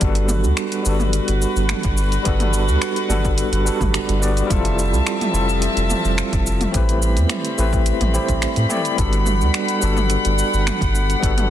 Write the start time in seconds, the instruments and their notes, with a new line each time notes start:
0.00 analog synth bass G1, tine electric piano G3 B3 D4 F#4, string section F#4 B4, kick, closed hi-hat, shaker
0.04 tine electric piano A4
0.15 closed hi-hat, shaker
0.28 mid tom, shaker
0.44 analog synth bass D2, shaker
0.57 finger snap, closed hi-hat, shaker
0.72 closed hi-hat, shaker
0.83 analog synth bass G1, tine electric piano G3 B3 D4, shaker
0.87 tine electric piano F#4 A4
1.00 mid tom, shaker
1.13 closed hi-hat, shaker
1.28 analog synth bass G1, closed hi-hat, shaker
1.42 shaker
1.56 analog synth bass G1, shaker
1.69 finger snap, closed hi-hat, mid tom, shaker
1.83 analog synth bass G1, kick, closed hi-hat, shaker
1.97 shaker
2.12 closed hi-hat, shaker
2.23 analog synth bass G1, tine electric piano G3 B3 D4, kick, closed hi-hat, shaker
2.27 tine electric piano F#4 A4
2.40 closed hi-hat, mid tom, shaker
2.53 shaker
2.68 analog synth bass D2, shaker
2.82 finger snap, closed hi-hat, shaker
2.96 closed hi-hat, shaker
3.09 analog synth bass G1, tine electric piano G3 B3 D4 F#4 A4, mid tom, shaker
3.25 kick, shaker
3.38 closed hi-hat, shaker
3.52 analog synth bass G1, closed hi-hat, shaker
3.64 tine electric piano G3 B3 D4 F#4 A4, shaker
3.81 analog synth bass G1, kick, mid tom, shaker
3.94 finger snap, closed hi-hat, shaker
4.09 analog synth bass G1, closed hi-hat, shaker
4.20 tine electric piano G3 B3 D4 F#4 D5, shaker
4.37 closed hi-hat, shaker
4.46 analog synth bass F1, string section F3 E5 A5, tine electric piano G3 C4 E4, kick
4.51 tine electric piano F4 A4, closed hi-hat, mid tom, shaker
4.65 closed hi-hat, shaker
4.79 shaker
4.92 analog synth bass C2, shaker
5.07 finger snap, closed hi-hat, shaker
5.21 closed hi-hat, mid tom, shaker
5.31 analog synth bass F1, tine electric piano G3 C4 E4 F4, shaker
5.36 tine electric piano A4
5.49 shaker
5.62 closed hi-hat, shaker
5.77 analog synth bass F1, closed hi-hat, shaker
5.90 mid tom, shaker
6.05 analog synth bass F1, shaker
6.18 finger snap, closed hi-hat, shaker
6.33 analog synth bass F1, kick, closed hi-hat, shaker
6.47 shaker
6.61 closed hi-hat, mid tom, shaker
6.71 analog synth bass A1, string section G3 C4 B5, tine electric piano A3 C4 E4 G4, kick, closed hi-hat, shaker
6.76 tine electric piano B4
6.89 closed hi-hat, shaker
7.02 shaker
7.17 analog synth bass E2, closed hi-hat, shaker
7.29 finger snap, closed hi-hat, mid tom, shaker
7.45 closed hi-hat, shaker
7.57 analog synth bass A1, tine electric piano A3 C4 E4 G4 B4, shaker
7.73 kick, shaker
7.86 closed hi-hat, shaker
8.01 analog synth bass A1, closed hi-hat, mid tom, shaker
8.13 tine electric piano A3 C4 E4 G4 C5, shaker
8.28 analog synth bass A1, kick, closed hi-hat, shaker
8.42 finger snap, closed hi-hat, shaker
8.56 analog synth bass A2, closed hi-hat, shaker
8.69 tine electric piano A3 C4 E4 G4 D5, mid tom, shaker
8.85 closed hi-hat, shaker
8.95 analog synth bass G1, tine electric piano G3 B3 D4 F#4, string section F#5, kick, closed hi-hat, shaker
9.01 tine electric piano A4
9.13 closed hi-hat, shaker
9.26 mid tom, shaker
9.41 analog synth bass D2, shaker
9.54 finger snap, closed hi-hat, shaker
9.68 closed hi-hat, shaker
9.80 analog synth bass G1, tine electric piano G3 B3 D4, shaker
9.84 tine electric piano F#4 A4
9.97 mid tom, shaker
10.10 closed hi-hat, shaker
10.25 analog synth bass G1, closed hi-hat, shaker
10.39 shaker
10.54 analog synth bass G1, shaker
10.67 finger snap, closed hi-hat, mid tom, shaker
10.81 analog synth bass G1, kick, closed hi-hat, shaker
10.95 shaker
11.10 closed hi-hat, shaker
11.19 analog synth bass G1, tine electric piano G3 B3 D4, kick
11.23 tine electric piano F#4 A4, closed hi-hat, shaker
11.38 closed hi-hat, mid tom, shaker